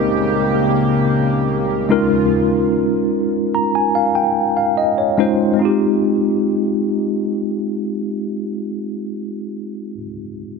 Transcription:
Already playing: analog synth pad C#3 A#3 G4, tine electric piano G#3 C4 D#4 G4 A#4 D#5
1.89 analog synth pad D#2 C#3 G#3 F4, tine electric piano G#3 C#4 D#4 F4 A#4
3.55 tine electric piano A#5
3.75 tine electric piano G#5
3.95 tine electric piano F5
4.15 tine electric piano G5
4.57 tine electric piano F5
4.77 tine electric piano D#5
4.98 tine electric piano C#5
5.17 tine electric piano G#3 C#4 D#4 F4 C5
5.54 tine electric piano G#3 C4
5.59 tine electric piano D#4 F4
5.65 tine electric piano G4

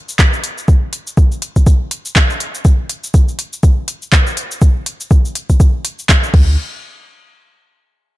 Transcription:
0.09 shaker
0.19 kick, clap, shaker
0.33 shaker
0.44 open hi-hat
0.58 shaker
0.68 kick, shaker
0.93 open hi-hat
1.07 shaker
1.17 kick, shaker
1.32 shaker
1.42 open hi-hat
1.56 kick, shaker
1.67 kick, shaker
1.91 open hi-hat
2.05 shaker
2.16 kick, clap, shaker
2.30 shaker
2.40 open hi-hat
2.55 shaker
2.65 kick, shaker
2.89 open hi-hat
3.04 shaker
3.14 kick, shaker
3.28 shaker
3.39 open hi-hat
3.53 shaker
3.63 kick, shaker
3.88 open hi-hat
4.02 shaker
4.12 kick, clap, shaker
4.27 shaker
4.37 open hi-hat
4.51 shaker
4.62 kick, shaker
4.86 open hi-hat
5.00 shaker
5.11 kick, shaker
5.25 shaker
5.35 open hi-hat
5.50 kick, shaker
5.60 kick, shaker
5.85 open hi-hat
5.99 shaker
6.09 kick, clap, shaker
6.23 shaker
6.34 sub bass D2, kick, crash

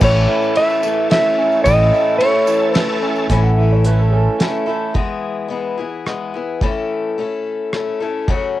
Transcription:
Already playing: clean electric guitar E3 E4
0.01 fingered electric bass A1, steel-string acoustic guitar A2 E3 A3 C#4 E4 A4, tonewheel organ A3 C#4 E4 A4, electric slide guitar C#5, kick, tambourine, crash
0.28 clean electric guitar E4
0.42 tambourine
0.56 steel-string acoustic guitar A3 C#4 E4 A4, electric slide guitar E5, ride
0.70 tambourine
0.82 clean electric guitar E3, steel-string acoustic guitar C#4 E4 A4, tambourine
0.87 steel-string acoustic guitar A3
1.10 steel-string acoustic guitar A3 C#4 E4 A4, electric slide guitar E5, snare, ride
1.38 clean electric guitar C#4
1.52 tambourine
1.64 fingered electric bass A1, steel-string acoustic guitar A2 E3 A3 C#4 E4 A4, electric slide guitar D#5, kick, ride, tambourine
1.93 clean electric guitar E4, tambourine
2.18 steel-string acoustic guitar A3 C#4 E4, electric slide guitar C#5, ride
2.23 steel-string acoustic guitar A4
2.47 clean electric guitar E3, tambourine
2.74 steel-string acoustic guitar A3 C#4 E4 A4, electric slide guitar B4, snare, ride
3.02 clean electric guitar C#4
3.16 tambourine
3.30 fingered electric bass A1, steel-string acoustic guitar A2 E3 A3 C#4 E4 A4, upright piano G#5, kick, closed hi-hat
3.44 upright piano F#5
3.58 clean electric guitar E3, upright piano E5
3.72 upright piano C#5
3.84 steel-string acoustic guitar A3 C#4 E4 A4, upright piano B4, closed hi-hat
3.99 upright piano A4
4.09 clean electric guitar C#4, upright piano G#4
4.13 upright piano A4
4.40 steel-string acoustic guitar A3 C#4 E4 A4, snare, closed hi-hat
4.66 steel-string acoustic guitar A3 C#4 E4 A4
4.94 steel-string acoustic guitar E3 G#3 B3 E4 G#4, kick
5.48 steel-string acoustic guitar G#3 B3 E4 G#4
5.78 steel-string acoustic guitar B3 E4 G#4
6.06 steel-string acoustic guitar G#3 B3 E4 G#4, cross-stick
6.34 steel-string acoustic guitar B3 E4 G#4
6.61 steel-string acoustic guitar A2 E3 A3 C#4 E4 A4, kick
7.18 steel-string acoustic guitar A3 C#4 E4 A4
7.73 steel-string acoustic guitar A3 C#4 E4 A4, cross-stick
8.00 steel-string acoustic guitar A3 C#4 E4 A4
8.28 steel-string acoustic guitar F#2 C#3 F#3 A3 C#4 F#4, kick

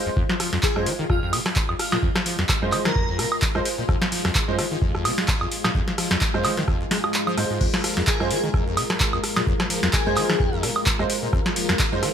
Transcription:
Already playing: grand piano G#3 F4 C5, string machine G#3 F4 C5
0.06 acid bass F#2
0.17 acid bass F2, string machine G#4, kick
0.29 acid bass F3, snare
0.40 acid bass F3, cross-stick, open hi-hat
0.53 acid bass F2, snare
0.63 digital synth lead G#4, kick, clap
0.76 acid bass F#2, grand piano G#3 F4 C5, cross-stick
0.86 acid bass F3, open hi-hat
0.99 acid bass D#3
1.10 acid bass F2, digital synth lead F4, kick, cross-stick
1.23 acid bass F2, digital synth lead F4
1.33 acid bass C3, open hi-hat, high woodblock
1.46 cross-stick, snare
1.56 kick, clap
1.69 acid bass F2, high woodblock
1.79 digital synth lead F4, cross-stick, open hi-hat
1.92 acid bass A#2, snare, high woodblock
2.03 acid bass F2, kick
2.16 acid bass F3, cross-stick, snare
2.26 acid bass F3, open hi-hat
2.39 acid bass F2, snare
2.49 kick, cross-stick, clap
2.62 acid bass F#2, grand piano G#3 F4 C5
2.72 acid bass F3, clap, open hi-hat, high woodblock
2.85 acid bass D#3, digital synth lead A#4, cross-stick, snare
2.96 acid bass F2, kick
3.09 acid bass F2
3.19 acid bass C3, cross-stick, open hi-hat
3.32 high woodblock
3.42 kick, clap
3.55 acid bass F2, grand piano G#3 F4 C5, cross-stick
3.65 open hi-hat
3.78 acid bass A#2
3.89 acid bass F2, kick, cross-stick
4.02 acid bass F3, snare
4.12 acid bass F3, open hi-hat
4.25 acid bass F2, cross-stick, snare
4.35 kick, clap
4.48 acid bass F#2, grand piano G#3 F4 C5
4.59 acid bass F3, cross-stick, open hi-hat
4.71 acid bass D#3
4.82 acid bass F2, kick
4.95 acid bass F2, cross-stick
5.05 acid bass C3, open hi-hat, high woodblock
5.18 snare
5.28 kick, cross-stick, clap
5.41 acid bass F2, high woodblock
5.52 open hi-hat
5.64 acid bass A#2, cross-stick, snare, high woodblock
5.75 acid bass F2, kick
5.88 acid bass F3, snare
5.98 acid bass F3, cross-stick, open hi-hat
6.11 acid bass F2, snare
6.21 kick, clap
6.34 acid bass F#2, grand piano G#3 F4 C5, cross-stick
6.44 acid bass F3, clap, open hi-hat, high woodblock
6.57 acid bass D#3, snare
6.68 acid bass F2, kick, cross-stick
6.81 acid bass F2
6.91 acid bass G#3, snare, open hi-hat
7.04 cross-stick, high woodblock
7.14 clap
7.27 acid bass F3, high woodblock
7.38 acid bass G#2, grand piano G#3 F4 C5, cross-stick, open hi-hat
7.50 acid bass G#2
7.61 acid bass F2, string machine A#4, kick, crash
7.74 acid bass F3, snare
7.84 acid bass F3, cross-stick, open hi-hat
7.97 acid bass F2, snare
8.07 digital synth lead G#4, kick, clap
8.20 acid bass F#2, grand piano G#3 F4 C5, cross-stick
8.31 acid bass F3, digital synth lead G#4, open hi-hat
8.43 acid bass D#3
8.54 acid bass F2, kick, cross-stick
8.67 acid bass F2
8.77 acid bass C3, open hi-hat, high woodblock
8.90 cross-stick, snare
9.00 kick, clap
9.13 acid bass F2, high woodblock
9.24 cross-stick, open hi-hat
9.36 acid bass A#2, snare, high woodblock
9.47 acid bass F2, kick
9.60 acid bass F3, cross-stick, snare
9.70 acid bass F3, open hi-hat
9.83 acid bass F2, snare
9.93 digital synth lead G#4, kick, cross-stick, clap
10.06 acid bass F#2, grand piano G#3 F4 C5
10.16 acid bass F3, clap, open hi-hat, high woodblock
10.29 acid bass D#3, cross-stick, snare
10.40 acid bass F2, kick
10.53 acid bass F2
10.63 acid bass C3, cross-stick, open hi-hat
10.76 high woodblock
10.86 kick, clap
10.99 acid bass F2, grand piano G#3 F4 C5, cross-stick
11.10 open hi-hat
11.23 acid bass A#2
11.33 acid bass F2, kick, cross-stick
11.46 acid bass F3, snare
11.56 acid bass F3, open hi-hat
11.69 acid bass F2, cross-stick, snare
11.79 kick, clap
11.92 acid bass F#2, grand piano G#3 F4 C5
12.03 acid bass F3, cross-stick, open hi-hat

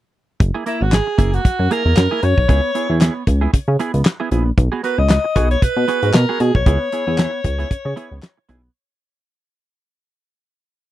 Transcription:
0.40 analog synth bass F#1, muted clean electric guitar stroke, kick, closed hi-hat
0.54 clean electric guitar A#3 E4 G#4
0.66 clean electric guitar A#3 E4 A#4, alto saxophone E4, closed hi-hat
0.81 analog synth bass G#1, alto saxophone F#4, muted clean electric guitar stroke
0.92 alto saxophone G#4, snare, clap, closed hi-hat
1.07 muted clean electric guitar stroke
1.18 analog synth bass F#1, clean electric guitar A#3 E4 G#4, kick, closed hi-hat
1.33 alto saxophone F#4, muted clean electric guitar stroke, closed hi-hat
1.44 analog synth bass F#2, muted clean electric guitar stroke, kick, closed hi-hat
1.59 analog synth bass F#2, muted clean electric guitar stroke
1.71 clean electric guitar A#3 E4 G#4, alto saxophone A#4, closed hi-hat
1.85 analog synth bass E2, clean electric guitar A#3 E4 A#4
1.97 analog synth bass F#2, snare, clap, closed hi-hat
2.11 clean electric guitar A#3 E4 G#4
2.23 analog synth bass F#2, alto saxophone C#5, closed hi-hat
2.37 analog synth bass B1, muted clean electric guitar stroke, kick
2.48 analog synth bass C#2, clean electric guitar B3 E4 G#4, kick, closed hi-hat
2.63 muted clean electric guitar stroke
2.75 clean electric guitar B3 E4 G#4, closed hi-hat
2.89 analog synth bass E2, clean electric guitar B3 E4 G#4
3.01 clean electric guitar B3 E4 G#4, snare, clap, closed hi-hat
3.15 muted clean electric guitar stroke
3.27 analog synth bass C#2, muted clean electric guitar stroke, kick, closed hi-hat
3.41 clean electric guitar B3 E4 G#4
3.53 analog synth bass C#3, kick, closed hi-hat
3.68 analog synth bass C#3, muted clean electric guitar stroke
3.79 clean electric guitar B3 E4 G#4, closed hi-hat
3.94 analog synth bass C#2, muted clean electric guitar stroke, closed hi-hat
4.05 muted clean electric guitar stroke, snare, clap, closed hi-hat
4.20 clean electric guitar B3 E4 G#4
4.31 analog synth bass A#1, clean electric guitar B3 E4 G#4, closed hi-hat
4.46 muted clean electric guitar stroke
4.58 analog synth bass B1, muted clean electric guitar stroke, kick, closed hi-hat
4.72 clean electric guitar B3 F#4 G#4
4.83 clean electric guitar B3 F#4 A#4, alto saxophone B4, closed hi-hat
4.98 analog synth bass C#2, alto saxophone D#5, muted clean electric guitar stroke
5.09 snare, clap, closed hi-hat
5.24 muted clean electric guitar stroke
5.36 analog synth bass B1, clean electric guitar B3 F#4 G#4, kick, closed hi-hat
5.50 alto saxophone C#5, muted clean electric guitar stroke, closed hi-hat
5.62 analog synth bass B2, alto saxophone B4, muted clean electric guitar stroke, kick, closed hi-hat
5.77 analog synth bass B2, muted clean electric guitar stroke
5.88 clean electric guitar B3 F#4 G#4, closed hi-hat
6.02 analog synth bass G#2, clean electric guitar B3 F#4 A#4, closed hi-hat
6.14 analog synth bass B2, alto saxophone A#4, snare, clap, closed hi-hat
6.29 clean electric guitar B3 F#4 G#4
6.40 analog synth bass B2, alto saxophone G#4, closed hi-hat
6.55 analog synth bass B1, alto saxophone C#5, muted clean electric guitar stroke, kick
6.66 analog synth bass C#2, clean electric guitar B3 E4 G#4, kick, closed hi-hat
6.81 muted clean electric guitar stroke
6.92 clean electric guitar B3 E4 G#4, closed hi-hat
7.07 analog synth bass E2, clean electric guitar B3 E4 G#4
7.18 clean electric guitar B3 E4 G#4, snare, clap, closed hi-hat
7.33 muted clean electric guitar stroke
7.44 analog synth bass C#2, muted clean electric guitar stroke, kick, closed hi-hat
7.59 clean electric guitar B3 E4 G#4, closed hi-hat
7.70 analog synth bass C#3, muted clean electric guitar stroke, kick, closed hi-hat
7.85 analog synth bass C#3, muted clean electric guitar stroke
7.96 clean electric guitar B3 E4 G#4, closed hi-hat
8.11 analog synth bass C#2
8.22 muted clean electric guitar stroke, snare, clap, closed hi-hat
8.37 muted clean electric guitar stroke
8.49 analog synth bass B1, clean electric guitar B3 E4 G#4, closed hi-hat

